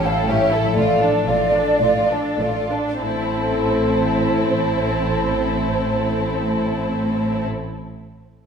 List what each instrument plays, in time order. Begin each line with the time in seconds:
Already playing: double bass section A1, cello section A2, harp A2 G3 A3 E4
0.04 viola section E4, violin section A4, flute section F5
0.27 double bass section A1, cello section A2, viola section C#4, violin section G4 C#5, flute section E5
0.51 viola section E4, violin section A4
0.58 harp A2
0.63 harp F3
0.67 harp A3
0.72 double bass section A1, cello section A2, viola section A3, harp F4
0.76 violin section F4 D5, flute section D5
1.00 viola section D4, violin section D4 A4
1.26 double bass section A1, cello section A2, viola section A3, violin section F4 D5
1.54 viola section D4, violin section D4 A4
1.82 double bass section A1, cello section A2, viola section A3, violin section F4 D5
2.10 viola section D4, violin section D4 A4
2.39 double bass section A1, cello section A2, viola section A3, violin section F4 D5
2.70 viola section D4, violin section D4 A4
3.01 double bass section A1, cello section A2, harp A2, viola section C4, violin section E4 A4, flute section C5
3.09 harp A3
3.16 harp E4
3.22 harp A4